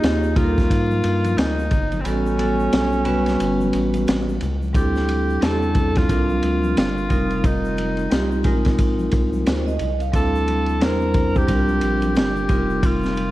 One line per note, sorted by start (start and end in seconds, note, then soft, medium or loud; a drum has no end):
0.00 0.67 D#2 loud
0.00 0.30 A#3 medium
0.00 0.31 D#4 medium
0.00 0.38 D#4 loud
0.00 0.31 F4 medium
0.00 0.30 G4 medium
0.00 0.31 G#4 medium
0.00 hi-hat pedal medium
0.00 ride medium
0.00 shaker medium
0.04 snare loud
0.23 shaker soft
0.35 1.60 G3 medium
0.35 1.60 A#3 medium
0.35 1.60 D#4 medium
0.35 1.39 F4 loud
0.35 1.61 F4 medium
0.35 0.45 A4 medium
0.35 kick loud
0.35 ride medium
0.35 low conga medium
0.35 shaker soft
0.44 1.64 A#4 medium
0.58 kick medium
0.58 snare soft
0.58 shaker soft
0.70 1.02 G#2 loud
0.70 kick medium
0.70 ride medium
0.70 shaker medium
0.91 high conga medium
0.91 shaker soft
1.04 1.36 G2 medium
1.04 ride medium
1.04 shaker soft
1.24 ride soft
1.24 high conga medium
1.24 shaker soft
1.38 1.70 D2 medium
1.38 2.02 D#4 loud
1.38 snare loud
1.38 hi-hat pedal medium
1.38 ride medium
1.38 shaker medium
1.59 shaker soft
1.71 2.03 G1 medium
1.71 kick medium
1.71 ride medium
1.71 low conga medium
1.71 shaker soft
1.92 ride soft
1.92 high conga medium
1.92 shaker soft
2.01 2.35 G3 medium
2.01 2.36 B3 medium
2.01 2.06 C4 medium
2.05 2.69 A1 loud
2.05 4.07 C#4 medium
2.05 2.36 C#4 medium
2.05 2.36 F#4 medium
2.05 2.37 A4 medium
2.05 ride medium
2.05 shaker medium
2.26 shaker medium
2.37 3.00 G3 medium
2.37 3.00 B3 medium
2.37 3.01 C#4 medium
2.37 3.01 F#4 medium
2.37 3.01 A4 medium
2.37 ride medium
2.37 high conga soft
2.37 shaker soft
2.60 shaker soft
2.72 3.37 B1 loud
2.72 snare loud
2.72 hi-hat pedal medium
2.72 ride medium
2.72 shaker medium
2.92 shaker soft
3.05 4.29 G3 medium
3.05 4.29 B3 medium
3.05 4.30 C#4 medium
3.05 4.30 F#4 medium
3.05 4.30 B4 medium
3.05 ride medium
3.05 low conga medium
3.05 shaker soft
3.26 snare soft
3.26 ride soft
3.26 shaker soft
3.40 3.72 G1 loud
3.40 ride medium
3.40 shaker medium
3.60 high conga medium
3.60 shaker soft
3.73 4.06 A1 loud
3.73 ride medium
3.73 shaker soft
3.94 ride soft
3.94 high conga medium
3.94 shaker medium
4.07 4.40 A1 medium
4.07 snare loud
4.07 hi-hat pedal medium
4.07 ride medium
4.07 shaker medium
4.29 shaker soft
4.41 4.73 C#2 loud
4.41 ride medium
4.41 low conga medium
4.41 shaker soft
4.62 high conga medium
4.62 shaker soft
4.73 5.39 D2 loud
4.73 5.36 G3 medium
4.73 5.36 C4 medium
4.73 5.36 D4 medium
4.73 5.37 E4 medium
4.73 5.44 G4 medium
4.73 5.37 A4 medium
4.73 kick loud
4.73 ride medium
4.73 shaker medium
4.95 snare soft
4.95 shaker soft
5.08 ride medium
5.08 high conga soft
5.08 shaker soft
5.30 shaker soft
5.41 6.06 E2 medium
5.41 6.07 G3 medium
5.41 6.07 C4 medium
5.41 6.08 D4 medium
5.41 6.10 E4 medium
5.41 5.50 G4 medium
5.41 5.99 A4 loud
5.41 snare loud
5.41 hi-hat pedal medium
5.41 ride medium
5.41 shaker medium
5.50 6.13 A4 medium
5.62 shaker soft
5.75 kick loud
5.75 ride medium
5.75 low conga medium
5.75 shaker soft
5.95 6.77 F4 medium
5.95 kick loud
5.95 snare soft
5.95 ride soft
5.95 shaker soft
6.08 6.41 C2 loud
6.08 7.02 G3 medium
6.08 7.02 C4 medium
6.08 7.02 D4 medium
6.08 7.02 F4 medium
6.08 7.03 A#4 medium
6.08 kick medium
6.08 ride medium
6.08 shaker medium
6.29 high conga medium
6.29 shaker soft
6.43 6.75 D2 medium
6.43 ride medium
6.43 shaker soft
6.63 high conga medium
6.63 shaker soft
6.77 7.09 G1 medium
6.77 7.48 F4 medium
6.77 snare loud
6.77 hi-hat pedal medium
6.77 ride medium
6.77 shaker medium
6.97 shaker soft
7.09 8.07 F1 loud
7.09 8.03 G3 medium
7.09 8.03 C4 medium
7.09 8.03 D#4 medium
7.09 8.04 F4 medium
7.09 8.04 A#4 medium
7.09 kick medium
7.09 ride medium
7.09 low conga medium
7.09 shaker soft
7.30 ride soft
7.30 shaker soft
7.44 8.80 D#4 medium
7.44 kick loud
7.44 ride medium
7.44 shaker medium
7.65 shaker soft
7.77 ride medium
7.77 high conga soft
7.77 shaker soft
7.97 ride soft
7.97 shaker soft
8.10 8.44 C2 loud
8.10 8.45 G3 medium
8.10 8.44 C4 medium
8.10 8.44 D#4 medium
8.10 8.45 F4 medium
8.10 8.46 G4 medium
8.10 snare loud
8.10 hi-hat pedal medium
8.10 ride medium
8.10 shaker medium
8.31 shaker soft
8.44 9.09 A#1 loud
8.44 9.69 G#3 medium
8.44 9.69 C4 medium
8.44 9.70 D#4 medium
8.44 9.70 F4 medium
8.44 9.70 A#4 medium
8.44 kick loud
8.44 ride medium
8.44 low conga medium
8.44 shaker soft
8.65 kick loud
8.65 snare soft
8.65 ride soft
8.65 shaker soft
8.78 kick medium
8.78 ride medium
8.78 shaker medium
8.99 high conga medium
8.99 shaker soft
9.11 9.45 C2 medium
9.11 kick medium
9.11 ride medium
9.11 shaker soft
9.33 high conga medium
9.33 shaker soft
9.46 9.79 D2 medium
9.46 9.66 C5 medium
9.46 snare loud
9.46 hi-hat pedal medium
9.46 ride medium
9.46 shaker medium
9.66 9.99 D#5 medium
9.66 shaker soft
9.79 10.12 C2 medium
9.79 ride medium
9.79 low conga medium
9.79 shaker soft
10.00 10.32 F5 medium
10.00 ride soft
10.00 shaker soft
10.12 10.83 D2 loud
10.12 10.75 G3 medium
10.12 10.75 C4 medium
10.12 10.76 D4 medium
10.12 10.76 E4 medium
10.12 10.76 A4 medium
10.12 10.85 A4 loud
10.12 kick loud
10.12 ride medium
10.12 shaker medium
10.35 shaker soft
10.47 ride medium
10.47 high conga soft
10.47 shaker soft
10.66 ride soft
10.66 shaker soft
10.80 11.45 E2 medium
10.80 11.46 G3 medium
10.80 11.46 C4 medium
10.80 11.47 D4 medium
10.80 11.49 E4 medium
10.80 11.39 A#4 loud
10.80 11.49 C5 medium
10.80 snare loud
10.80 hi-hat pedal medium
10.80 ride medium
10.80 shaker medium
11.01 shaker soft
11.14 kick medium
11.14 ride medium
11.14 low conga medium
11.14 shaker soft
11.35 12.17 G4 loud
11.35 kick medium
11.35 shaker soft
11.47 11.81 C2 loud
11.47 12.41 G3 medium
11.47 12.41 C4 medium
11.47 12.42 D4 medium
11.47 12.42 F4 medium
11.47 12.42 A#4 medium
11.47 kick medium
11.47 ride medium
11.47 shaker medium
11.68 high conga medium
11.68 shaker soft
11.81 12.18 A#1 loud
11.81 ride medium
11.81 shaker soft
12.02 ride soft
12.02 high conga medium
12.02 shaker soft
12.15 12.48 G1 loud
12.15 12.87 G4 medium
12.15 snare loud
12.15 hi-hat pedal medium
12.15 ride medium
12.15 shaker medium
12.36 shaker soft
12.48 13.31 F1 loud
12.48 13.31 G3 medium
12.48 13.31 C4 medium
12.48 13.31 D#4 medium
12.48 13.31 F4 medium
12.48 13.31 A#4 medium
12.48 kick medium
12.48 ride medium
12.48 low conga medium
12.48 shaker soft
12.70 shaker soft
12.83 13.31 F4 medium
12.83 kick loud
12.83 ride medium
12.83 shaker medium
13.03 snare soft
13.03 shaker soft
13.16 ride medium
13.16 high conga soft
13.16 shaker soft